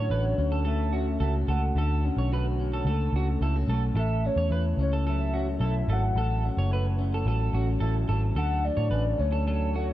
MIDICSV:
0, 0, Header, 1, 5, 480
1, 0, Start_track
1, 0, Tempo, 550459
1, 1532, Time_signature, 4, 2, 24, 8
1, 8659, End_track
2, 0, Start_track
2, 0, Title_t, "Soft synth lead"
2, 0, Program_c, 0, 80
2, 0, Note_on_c, 0, 73, 116
2, 304, Note_off_c, 0, 73, 0
2, 330, Note_on_c, 0, 73, 95
2, 439, Note_off_c, 0, 73, 0
2, 576, Note_on_c, 0, 76, 105
2, 1020, Note_off_c, 0, 76, 0
2, 1058, Note_on_c, 0, 76, 89
2, 1165, Note_off_c, 0, 76, 0
2, 1298, Note_on_c, 0, 78, 101
2, 1742, Note_off_c, 0, 78, 0
2, 3470, Note_on_c, 0, 76, 101
2, 3716, Note_on_c, 0, 73, 98
2, 3730, Note_off_c, 0, 76, 0
2, 4184, Note_off_c, 0, 73, 0
2, 4204, Note_on_c, 0, 73, 94
2, 4305, Note_off_c, 0, 73, 0
2, 4440, Note_on_c, 0, 76, 104
2, 4874, Note_off_c, 0, 76, 0
2, 4929, Note_on_c, 0, 76, 98
2, 5164, Note_on_c, 0, 78, 112
2, 5177, Note_off_c, 0, 76, 0
2, 5628, Note_off_c, 0, 78, 0
2, 7302, Note_on_c, 0, 78, 117
2, 7540, Note_on_c, 0, 74, 109
2, 7553, Note_off_c, 0, 78, 0
2, 8020, Note_on_c, 0, 73, 99
2, 8033, Note_off_c, 0, 74, 0
2, 8257, Note_off_c, 0, 73, 0
2, 8262, Note_on_c, 0, 73, 99
2, 8659, Note_off_c, 0, 73, 0
2, 8659, End_track
3, 0, Start_track
3, 0, Title_t, "Clean electric guitar"
3, 0, Program_c, 1, 27
3, 97, Note_on_c, 1, 71, 80
3, 209, Note_off_c, 1, 71, 0
3, 452, Note_on_c, 1, 69, 70
3, 555, Note_off_c, 1, 69, 0
3, 566, Note_on_c, 1, 69, 98
3, 797, Note_off_c, 1, 69, 0
3, 807, Note_on_c, 1, 66, 79
3, 924, Note_off_c, 1, 66, 0
3, 1048, Note_on_c, 1, 69, 84
3, 1164, Note_off_c, 1, 69, 0
3, 1294, Note_on_c, 1, 69, 74
3, 1407, Note_off_c, 1, 69, 0
3, 1554, Note_on_c, 1, 69, 102
3, 1772, Note_off_c, 1, 69, 0
3, 1905, Note_on_c, 1, 73, 65
3, 2013, Note_off_c, 1, 73, 0
3, 2035, Note_on_c, 1, 71, 80
3, 2138, Note_off_c, 1, 71, 0
3, 2384, Note_on_c, 1, 69, 73
3, 2490, Note_off_c, 1, 69, 0
3, 2501, Note_on_c, 1, 69, 94
3, 2725, Note_off_c, 1, 69, 0
3, 2754, Note_on_c, 1, 66, 77
3, 2858, Note_off_c, 1, 66, 0
3, 2986, Note_on_c, 1, 69, 86
3, 3093, Note_off_c, 1, 69, 0
3, 3223, Note_on_c, 1, 69, 78
3, 3332, Note_off_c, 1, 69, 0
3, 3458, Note_on_c, 1, 69, 98
3, 3683, Note_off_c, 1, 69, 0
3, 3815, Note_on_c, 1, 73, 70
3, 3928, Note_off_c, 1, 73, 0
3, 3941, Note_on_c, 1, 71, 79
3, 4051, Note_off_c, 1, 71, 0
3, 4299, Note_on_c, 1, 69, 72
3, 4407, Note_off_c, 1, 69, 0
3, 4418, Note_on_c, 1, 69, 93
3, 4643, Note_off_c, 1, 69, 0
3, 4653, Note_on_c, 1, 66, 76
3, 4767, Note_off_c, 1, 66, 0
3, 4889, Note_on_c, 1, 69, 88
3, 5004, Note_off_c, 1, 69, 0
3, 5141, Note_on_c, 1, 69, 82
3, 5251, Note_off_c, 1, 69, 0
3, 5386, Note_on_c, 1, 69, 98
3, 5608, Note_off_c, 1, 69, 0
3, 5742, Note_on_c, 1, 73, 68
3, 5852, Note_off_c, 1, 73, 0
3, 5868, Note_on_c, 1, 71, 81
3, 5975, Note_off_c, 1, 71, 0
3, 6228, Note_on_c, 1, 69, 77
3, 6335, Note_off_c, 1, 69, 0
3, 6346, Note_on_c, 1, 69, 93
3, 6568, Note_off_c, 1, 69, 0
3, 6577, Note_on_c, 1, 66, 81
3, 6689, Note_off_c, 1, 66, 0
3, 6805, Note_on_c, 1, 69, 85
3, 6923, Note_off_c, 1, 69, 0
3, 7053, Note_on_c, 1, 69, 80
3, 7167, Note_off_c, 1, 69, 0
3, 7293, Note_on_c, 1, 69, 98
3, 7521, Note_off_c, 1, 69, 0
3, 7646, Note_on_c, 1, 73, 67
3, 7764, Note_off_c, 1, 73, 0
3, 7767, Note_on_c, 1, 71, 77
3, 7885, Note_off_c, 1, 71, 0
3, 8130, Note_on_c, 1, 69, 73
3, 8246, Note_off_c, 1, 69, 0
3, 8262, Note_on_c, 1, 69, 94
3, 8487, Note_off_c, 1, 69, 0
3, 8507, Note_on_c, 1, 66, 85
3, 8615, Note_off_c, 1, 66, 0
3, 8659, End_track
4, 0, Start_track
4, 0, Title_t, "Clean electric guitar"
4, 0, Program_c, 2, 27
4, 0, Note_on_c, 2, 50, 83
4, 0, Note_on_c, 2, 54, 67
4, 0, Note_on_c, 2, 61, 63
4, 87, Note_on_c, 2, 66, 70
4, 328, Note_off_c, 2, 61, 0
4, 332, Note_on_c, 2, 61, 60
4, 576, Note_off_c, 2, 54, 0
4, 580, Note_on_c, 2, 57, 67
4, 810, Note_off_c, 2, 61, 0
4, 813, Note_on_c, 2, 61, 66
4, 1055, Note_off_c, 2, 66, 0
4, 1059, Note_on_c, 2, 66, 74
4, 1288, Note_off_c, 2, 57, 0
4, 1292, Note_on_c, 2, 57, 66
4, 1525, Note_off_c, 2, 50, 0
4, 1536, Note_on_c, 2, 50, 81
4, 1782, Note_off_c, 2, 61, 0
4, 1785, Note_on_c, 2, 61, 64
4, 2018, Note_off_c, 2, 66, 0
4, 2021, Note_on_c, 2, 66, 70
4, 2259, Note_off_c, 2, 61, 0
4, 2263, Note_on_c, 2, 61, 57
4, 2502, Note_off_c, 2, 57, 0
4, 2505, Note_on_c, 2, 57, 63
4, 2749, Note_off_c, 2, 61, 0
4, 2753, Note_on_c, 2, 61, 68
4, 2979, Note_off_c, 2, 66, 0
4, 2982, Note_on_c, 2, 64, 70
4, 3104, Note_off_c, 2, 64, 0
4, 3104, Note_on_c, 2, 66, 59
4, 3218, Note_off_c, 2, 57, 0
4, 3221, Note_on_c, 2, 57, 62
4, 3454, Note_off_c, 2, 50, 0
4, 3460, Note_on_c, 2, 45, 83
4, 3506, Note_off_c, 2, 66, 0
4, 3699, Note_off_c, 2, 61, 0
4, 3703, Note_on_c, 2, 61, 64
4, 3929, Note_on_c, 2, 64, 64
4, 4172, Note_off_c, 2, 61, 0
4, 4175, Note_on_c, 2, 61, 65
4, 4409, Note_off_c, 2, 57, 0
4, 4412, Note_on_c, 2, 54, 61
4, 4654, Note_off_c, 2, 61, 0
4, 4657, Note_on_c, 2, 61, 65
4, 4891, Note_off_c, 2, 64, 0
4, 4901, Note_on_c, 2, 64, 75
4, 5132, Note_off_c, 2, 54, 0
4, 5136, Note_on_c, 2, 54, 64
4, 5365, Note_off_c, 2, 45, 0
4, 5375, Note_on_c, 2, 45, 87
4, 5613, Note_off_c, 2, 61, 0
4, 5616, Note_on_c, 2, 61, 61
4, 5839, Note_off_c, 2, 64, 0
4, 5850, Note_on_c, 2, 64, 73
4, 6085, Note_off_c, 2, 61, 0
4, 6089, Note_on_c, 2, 61, 65
4, 6332, Note_off_c, 2, 54, 0
4, 6335, Note_on_c, 2, 54, 62
4, 6573, Note_off_c, 2, 61, 0
4, 6577, Note_on_c, 2, 61, 67
4, 6809, Note_off_c, 2, 64, 0
4, 6819, Note_on_c, 2, 64, 74
4, 7063, Note_off_c, 2, 54, 0
4, 7066, Note_on_c, 2, 54, 70
4, 7295, Note_off_c, 2, 45, 0
4, 7296, Note_on_c, 2, 50, 83
4, 7345, Note_off_c, 2, 64, 0
4, 7536, Note_off_c, 2, 61, 0
4, 7539, Note_on_c, 2, 57, 64
4, 7781, Note_on_c, 2, 61, 71
4, 8005, Note_off_c, 2, 57, 0
4, 8015, Note_on_c, 2, 57, 63
4, 8252, Note_off_c, 2, 54, 0
4, 8256, Note_on_c, 2, 54, 65
4, 8480, Note_off_c, 2, 57, 0
4, 8491, Note_on_c, 2, 57, 70
4, 8659, Note_off_c, 2, 50, 0
4, 8659, Note_off_c, 2, 54, 0
4, 8659, Note_off_c, 2, 57, 0
4, 8659, Note_off_c, 2, 61, 0
4, 8659, End_track
5, 0, Start_track
5, 0, Title_t, "Picked electric bass"
5, 0, Program_c, 3, 34
5, 90, Note_on_c, 3, 33, 97
5, 283, Note_off_c, 3, 33, 0
5, 332, Note_on_c, 3, 38, 97
5, 1017, Note_off_c, 3, 38, 0
5, 1049, Note_on_c, 3, 37, 86
5, 1242, Note_off_c, 3, 37, 0
5, 1289, Note_on_c, 3, 37, 89
5, 1482, Note_off_c, 3, 37, 0
5, 1527, Note_on_c, 3, 38, 106
5, 1817, Note_off_c, 3, 38, 0
5, 1890, Note_on_c, 3, 35, 91
5, 2461, Note_off_c, 3, 35, 0
5, 2484, Note_on_c, 3, 37, 95
5, 2679, Note_off_c, 3, 37, 0
5, 2725, Note_on_c, 3, 37, 102
5, 2920, Note_off_c, 3, 37, 0
5, 2970, Note_on_c, 3, 37, 93
5, 3162, Note_off_c, 3, 37, 0
5, 3206, Note_on_c, 3, 35, 95
5, 3400, Note_off_c, 3, 35, 0
5, 3441, Note_on_c, 3, 33, 101
5, 3733, Note_off_c, 3, 33, 0
5, 3805, Note_on_c, 3, 40, 87
5, 3904, Note_off_c, 3, 40, 0
5, 3923, Note_on_c, 3, 40, 104
5, 4119, Note_off_c, 3, 40, 0
5, 4162, Note_on_c, 3, 37, 87
5, 4853, Note_off_c, 3, 37, 0
5, 4885, Note_on_c, 3, 35, 84
5, 5080, Note_off_c, 3, 35, 0
5, 5126, Note_on_c, 3, 32, 99
5, 5321, Note_off_c, 3, 32, 0
5, 5363, Note_on_c, 3, 33, 104
5, 5655, Note_off_c, 3, 33, 0
5, 5731, Note_on_c, 3, 30, 85
5, 6302, Note_off_c, 3, 30, 0
5, 6328, Note_on_c, 3, 33, 101
5, 6522, Note_off_c, 3, 33, 0
5, 6568, Note_on_c, 3, 33, 92
5, 6762, Note_off_c, 3, 33, 0
5, 6809, Note_on_c, 3, 33, 90
5, 7003, Note_off_c, 3, 33, 0
5, 7051, Note_on_c, 3, 32, 96
5, 7244, Note_off_c, 3, 32, 0
5, 7284, Note_on_c, 3, 38, 102
5, 7576, Note_off_c, 3, 38, 0
5, 7650, Note_on_c, 3, 45, 88
5, 7747, Note_off_c, 3, 45, 0
5, 7763, Note_on_c, 3, 33, 96
5, 7960, Note_off_c, 3, 33, 0
5, 8016, Note_on_c, 3, 38, 95
5, 8659, Note_off_c, 3, 38, 0
5, 8659, End_track
0, 0, End_of_file